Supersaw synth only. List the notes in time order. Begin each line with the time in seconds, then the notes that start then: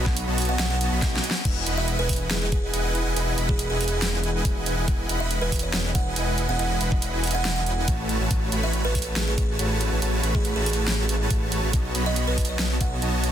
Already playing: B3 F#4 C#5 D#5 B5
0.28 B3 F#4 C#5 D#5 A5
0.59 B3 F#4 C#5 D#5 A5
0.92 B3 F#4 C#5 D#5 B5
1.13 B3 F#4 C#5 D#5 G#5
1.45 E4 B4 D#5 F#5 G#5
1.66 E4 B4 D#5 F#5 B5
1.99 E4 B4 D#5 F#5 G#5
2.31 E4 B4 D#5 F#5 G#5
2.73 E4 B4 D#5 F#5 G#5
3.06 E4 B4 D#5 F#5 G#5
3.16 E4 B4 D#5 F#5 G#5
3.38 E4 B4 D#5 F#5 B5
3.70 E4 B4 D#5 F#5 G#5
4.02 E4 B4 D#5 F#5 G#5
4.45 E4 B4 D#5 F#5 G#5
4.77 E4 B4 D#5 F#5 G#5
4.88 E4 B4 D#5 F#5 G#5
5.09 E4 B4 D#5 F#5 B5
5.42 E4 B4 D#5 F#5 G#5
5.73 E4 B4 D#5 F#5 G#5
6.16 E4 B4 D#5 F#5 G#5
6.49 E4 B4 D#5 F#5 G#5
6.59 E4 B4 D#5 F#5 G#5
6.80 E4 B4 D#5 F#5 B5
7.13 E4 B4 D#5 F#5 G#5
7.45 E4 B4 D#5 F#5 G#5
7.88 A3 F#4 B4 C#5 A5
8.20 A3 F#4 B4 C#5 A5
8.31 A3 F#4 B4 C#5 A5
8.52 A3 F#4 B4 C#5 B5
8.85 A3 F#4 B4 C#5 A5
9.16 A3 F#4 B4 C#5 A5
9.59 A3 F#4 B4 C#5 A5
9.92 A3 F#4 B4 C#5 A5
10.02 A3 F#4 B4 C#5 A5
10.23 A3 F#4 B4 C#5 B5
10.56 A3 F#4 B4 C#5 A5
10.88 A3 F#4 B4 C#5 A5
11.30 A3 F#4 B4 C#5 A5
11.63 A3 F#4 B4 C#5 A5
11.73 B3 F#4 C#5 D#5 A5
11.95 B3 F#4 C#5 D#5 B5
12.27 B3 F#4 C#5 D#5 A5
12.59 B3 F#4 C#5 D#5 A5
13.02 B3 F#4 C#5 D#5 A5